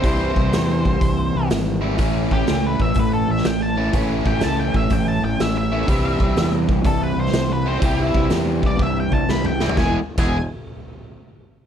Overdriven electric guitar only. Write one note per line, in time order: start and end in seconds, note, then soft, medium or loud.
0.03 1.81 C3 medium
0.03 1.82 E3 medium
0.03 1.81 G3 medium
0.03 1.81 C4 medium
0.03 1.81 E4 loud
1.81 1.97 C3 medium
1.81 1.97 E3 medium
1.81 1.98 G3 medium
1.81 1.98 C4 medium
1.81 1.99 E4 medium
1.98 3.75 A2 medium
1.98 3.77 E3 medium
1.98 3.76 A3 medium
1.98 3.76 C#4 medium
1.98 3.77 E4 medium
3.77 3.92 A2 medium
3.77 3.94 E3 medium
3.77 3.93 A3 medium
3.77 3.93 C#4 medium
3.77 3.95 E4 medium
3.94 5.70 A2 medium
3.94 5.73 E3 medium
3.94 5.71 A3 medium
3.94 5.71 C#4 medium
3.94 5.71 E4 medium
5.72 5.87 A2 medium
5.72 5.88 E3 medium
5.72 5.88 A3 medium
5.72 5.88 C#4 medium
5.72 5.89 E4 medium
5.87 7.64 C3 medium
5.87 7.68 E3 medium
5.87 7.65 G3 medium
5.87 7.65 C4 medium
5.87 7.66 E4 medium
7.66 7.81 C3 medium
7.66 7.83 E3 medium
7.66 7.83 G3 medium
7.66 7.82 C4 medium
7.66 7.84 E4 medium
7.82 9.59 C3 medium
7.82 9.59 E3 medium
7.82 9.59 G3 medium
7.82 9.59 C4 medium
7.82 9.59 E4 loud
9.61 9.77 C3 medium
9.61 9.77 E3 medium
9.61 9.77 G3 medium
9.61 9.76 C4 medium
9.61 9.76 E4 medium
9.79 9.98 E3 medium
9.79 9.98 G#3 medium
9.79 9.98 B3 medium
9.79 9.98 E4 loud
9.79 9.98 G#4 loud
10.18 10.36 E3 medium
10.18 10.36 G#3 medium
10.18 10.36 B3 loud
10.18 10.36 E4 loud
10.18 10.36 G#4 loud